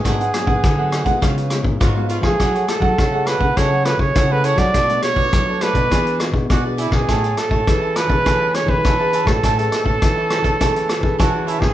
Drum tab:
HH |xxx-x-xxxxx-x-x-|xxx-x-x-x-x-x-xx|xxx-x-xxxxx-x-x-|xxx-x-x-x-x-x-xx|
SD |r-r-r-r-r-r-r--r|r-r-r-r-r-r-r--r|r-r-r-r-r-r-r--r|r-r-r-r-r-r-r--r|
BD |o--oo--oo--oo--o|o--oo--oo--oo--o|o--oo--oo--oo--o|o--oo--oo--oo--o|

HH |xxx-x-xxxxx-x-x-|
SD |r-r-r-r-r-r-r--r|
BD |o--oo--oo--oo--o|